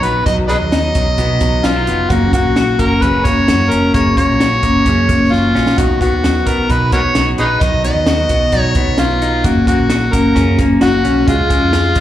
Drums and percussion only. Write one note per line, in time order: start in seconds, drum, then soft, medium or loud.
0.03 closed hi-hat medium
0.26 kick loud
0.26 closed hi-hat medium
0.49 closed hi-hat medium
0.72 snare loud
0.72 closed hi-hat medium
0.95 kick medium
0.95 closed hi-hat medium
1.18 kick medium
1.18 closed hi-hat medium
1.40 kick medium
1.40 snare soft
1.40 closed hi-hat medium
1.64 snare medium
1.64 closed hi-hat medium
1.87 closed hi-hat medium
2.10 kick loud
2.10 closed hi-hat medium
2.33 kick medium
2.33 closed hi-hat medium
2.56 snare medium
2.56 closed hi-hat medium
2.79 kick medium
2.79 closed hi-hat medium
3.02 kick medium
3.02 closed hi-hat medium
3.25 kick medium
3.25 snare soft
3.25 closed hi-hat medium
3.48 snare loud
3.48 closed hi-hat medium
3.71 closed hi-hat medium
3.94 kick loud
3.94 closed hi-hat medium
4.17 kick medium
4.17 closed hi-hat medium
4.40 snare loud
4.40 closed hi-hat medium
4.63 kick medium
4.63 closed hi-hat medium
4.86 kick medium
4.86 closed hi-hat medium
5.09 kick medium
5.09 closed hi-hat medium
5.32 snare soft
5.55 snare medium
5.67 snare medium
5.78 kick loud
5.78 closed hi-hat medium
6.01 kick medium
6.01 closed hi-hat medium
6.24 snare loud
6.24 closed hi-hat medium
6.47 kick medium
6.47 closed hi-hat medium
6.70 kick medium
6.70 closed hi-hat medium
6.92 kick medium
6.92 closed hi-hat medium
7.15 snare medium
7.15 closed hi-hat medium
7.38 closed hi-hat medium
7.61 kick loud
7.61 closed hi-hat medium
7.84 closed hi-hat medium
8.06 snare loud
8.06 closed hi-hat medium
8.29 kick medium
8.29 closed hi-hat medium
8.52 kick medium
8.52 closed hi-hat medium
8.75 kick loud
8.75 closed hi-hat medium
8.98 snare loud
8.98 closed hi-hat medium
9.22 closed hi-hat medium
9.44 kick loud
9.44 closed hi-hat medium
9.67 kick medium
9.67 closed hi-hat medium
9.90 snare loud
9.90 closed hi-hat medium
10.13 kick medium
10.13 closed hi-hat medium
10.36 kick medium
10.36 closed hi-hat medium
10.59 kick medium
10.59 snare soft
10.59 closed hi-hat medium
10.81 snare medium
10.81 closed hi-hat medium
11.05 closed hi-hat medium
11.28 kick loud
11.28 closed hi-hat medium
11.50 kick medium
11.50 closed hi-hat medium
11.73 snare loud
11.73 closed hi-hat medium
11.95 kick medium
11.95 closed hi-hat medium